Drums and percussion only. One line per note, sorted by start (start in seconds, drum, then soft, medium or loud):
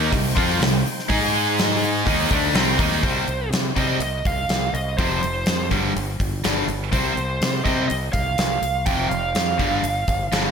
0.13 kick medium
0.13 open hi-hat medium
0.37 kick loud
0.37 open hi-hat medium
0.62 snare loud
0.62 open hi-hat medium
0.86 open hi-hat medium
1.00 snare soft
1.10 kick loud
1.10 open hi-hat medium
1.35 open hi-hat medium
1.59 snare loud
1.59 open hi-hat medium
1.83 open hi-hat medium
2.07 kick loud
2.07 open hi-hat medium
2.31 kick loud
2.31 open hi-hat medium
2.55 snare loud
2.55 open hi-hat medium
2.79 kick loud
2.79 open hi-hat medium
2.91 snare soft
3.03 kick loud
3.03 open hi-hat medium
3.28 open hi-hat soft
3.53 snare loud
3.53 open hi-hat medium
3.76 kick medium
3.76 open hi-hat medium
4.00 open hi-hat medium
4.25 kick medium
4.25 open hi-hat soft
4.49 snare loud
4.49 open hi-hat medium
4.75 open hi-hat medium
4.99 kick loud
4.99 open hi-hat medium
5.23 open hi-hat medium
5.46 snare loud
5.46 open hi-hat medium
5.71 kick medium
5.71 open hi-hat soft
5.97 open hi-hat medium
6.20 kick medium
6.20 open hi-hat soft
6.44 snare loud
6.44 open hi-hat medium
6.69 open hi-hat medium
6.93 kick loud
6.93 open hi-hat medium
7.17 open hi-hat medium
7.42 snare loud
7.42 open hi-hat medium
7.66 kick medium
7.66 open hi-hat medium
7.90 open hi-hat medium
8.13 kick medium
8.13 open hi-hat soft
8.38 snare loud
8.38 open hi-hat medium
8.63 open hi-hat medium
8.86 kick loud
8.86 open hi-hat medium
9.11 open hi-hat medium
9.35 snare loud
9.35 open hi-hat medium
9.59 kick medium
9.59 open hi-hat soft
9.84 open hi-hat medium
10.08 kick medium
10.08 open hi-hat soft
10.32 snare loud
10.32 open hi-hat medium